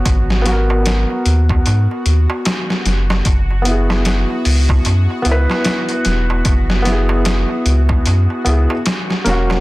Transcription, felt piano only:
X:1
M:4/4
L:1/8
Q:"Swing 16ths" 1/4=75
K:F#mix
V:1 name="Felt piano"
[B,Fc] [B,FA]6- [B,FA] | z [B,EG]4 [B,EB]3- | [B,EB] [B,EG]4 [B,EG] z [A,CF] |]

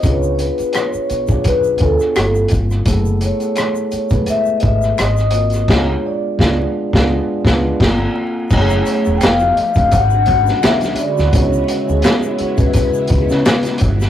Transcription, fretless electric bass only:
X:1
M:4/4
L:1/16
Q:"Swing 16ths" 1/4=85
K:C#phr
V:1 name="Fretless electric bass" clef=bass
C,,3 z3 B,,,2 B,,,2 D,, z =G,,,2 G,,,2 | F,,,3 z4 B,,, z2 G,,,2 G,,,4 | C,,2 z2 C,,2 z C,,2 z C,,2 =G,,,2 z2 | F,,,2 z E,,, =F,,,2 z F,,, G,,,4 B,,,2 z D,, |
C,,2 z D,, z3 C,,2 z C,, C, z2 =G,,,2 |]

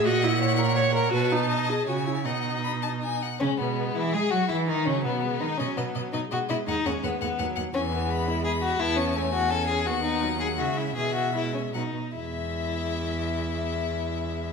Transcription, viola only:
X:1
M:3/4
L:1/8
Q:1/4=165
K:E
V:1 name="Viola" clef=bass
F E2 ^A c A | F D2 G F E | D4- D z | G,6 |
E,2 F,2 G,2 | F,4 G,2- | G,4 F,2 | E,2 G,4 |
B,2 A,2 C2 | B,2 F,2 G,2 | E,2 G,2 F, z | G,6- |
G,6 |]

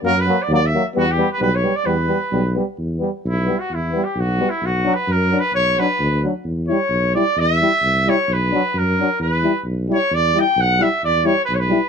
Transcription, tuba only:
X:1
M:2/4
L:1/8
Q:1/4=131
K:none
V:1 name="Tuba" clef=bass
^F,,2 ^D,,2 | E,,2 B,,,2 | E,,2 B,,,2 | E,,2 B,,,2 |
E,,2 B,,,2 | B,,,2 ^F,,2 | B,,,2 D,,2 | E,,2 B,,,2 |
E,,2 C,,2 | B,,,2 ^F,,2 | E,,2 B,,,2 | E,,2 B,,,2 |
E,,2 B,,,2 |]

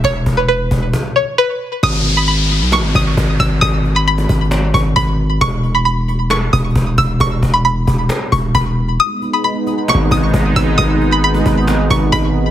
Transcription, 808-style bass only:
X:1
M:4/4
L:1/16
Q:1/4=134
K:G#m
V:1 name="808-style bass" clef=bass
E,,,2 E,,,4 E,,,2 z8 | G,,,6- G,,, B,,,3/2 G,,,3/2 G,,,2 G,,,2 G,,,2 | G,,,6 G,,,4 G,,,2 G,,,4 | E,,,8- E,,,2 E,,,2 E,,,2 E,,,2 |
E,,,2 E,,,4 E,,,2 z2 E,,,2 E,,,4 | z8 z/2 G,,,3/2 G,,,2 G,,,2 G,,,2 | G,,,6 G,,,4 G,,,2 G,,,4 |]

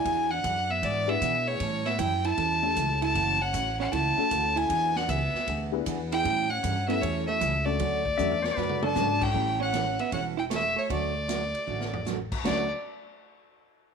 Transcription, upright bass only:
X:1
M:4/4
L:1/8
Q:"Swing" 1/4=155
K:D
V:1 name="Upright bass" clef=bass
E,,2 F,,2 ^G,,2 B,,2 | A,,2 F,,2 E,,2 C,,2 | F,,,2 A,,,2 C,, z D,,2 | E,,2 C,, z D,,2 E,,2 |
A,,2 G,,2 E,,2 C,,2 | D,,2 E,,2 F,,2 ^G,,2 | A,,,4 E,,,4 | D,,4 A,,,4 |
D,, z6 z |]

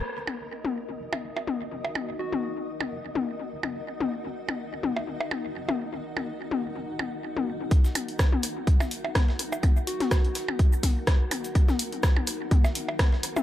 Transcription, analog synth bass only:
X:1
M:4/4
L:1/16
Q:"Swing 16ths" 1/4=125
K:Ebm
V:1 name="Analog synth bass" clef=bass
z E,,, z E,,, z3 E,,, G,,, E,,, E,,, z2 E,,, G,,, z | z E,,, z E,,, z3 E,,, G,,, E,,, E,,, z2 E,,, G,,, z | z E,,, z E,,, z3 E,,, G,,, E,,, E,,, z2 E,,, G,,, z | z E,,, z E,,, z3 E,,, G,,, E,,, E,,, z2 E,,, G,,, z |
z16 | z16 | z16 |]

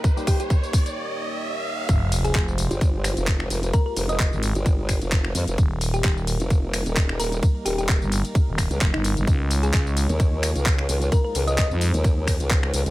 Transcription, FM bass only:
X:1
M:4/4
L:1/16
Q:"Swing 16ths" 1/4=130
K:Fm
V:1 name="FM bass" clef=bass
z16 | F,,,4 F,,,3 z8 z | z4 z A,,,2 z8 z | E,,,4 E,,,3 z8 z |
z4 z G,,,2 z2 E,,,2 z F,,, G,,,2 G,,, | D,,4 D,,3 z8 z | z4 z F,,2 z8 z |]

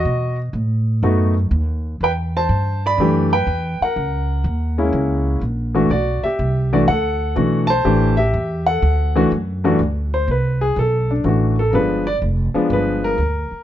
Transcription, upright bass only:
X:1
M:4/4
L:1/8
Q:"Swing" 1/4=123
K:Ador
V:1 name="Upright bass" clef=bass
B,,2 A,,2 F,,2 ^D,,2 | E,,2 G,,2 F,,2 E,, z | ^C,,2 _E,,2 C,,2 ^A,,,2 | B,,, z C,,2 D,,2 B,,,2 |
A,,,2 E,,2 D,,2 F,,2 | D,,2 C,,2 B,,,2 A,,,2 | G,,,2 =F,,, z G,,,2 D,, z |]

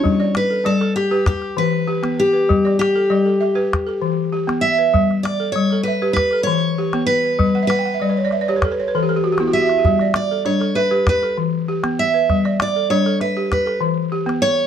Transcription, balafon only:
X:1
M:4/4
L:1/16
Q:1/4=98
K:Glyd
V:1 name="Balafon"
E/2 z/2 d2 A d A2 B2 z3 G3 B- | B d2 A d A e B2 A3 G3 B- | B z2 A2 A e B2 A3 G3 B- | B f/2 e/2 f/2 g/2 f/2 e/2 d/2 B/2 c/2 d/2 e/2 d/2 c/2 B/2 A/2 B/2 c/2 B/2 A/2 G/2 A/2 G/2 F/2 G/2 E/2 F/2 G/2 F/2 E/2 G/2- |
G/2 z/2 d2 A D A e B2 A3 G3 B- | B d2 A D A e3 A3 G3 z |]
V:2 name="Balafon" clef=bass
G,2 z2 G,2 z G z2 E,2 z B,2 z | G,2 z2 G,2 z G z2 E,2 z B,2 z | G,2 z2 G,2 z G z2 E,2 z B,2 z | G,2 z2 G,2 z G z2 E,2 z B,2 z |
G,2 z2 G,2 z G z2 E,2 z B,2 z | G,2 z2 G,2 z G z2 E,2 z B,2 z |]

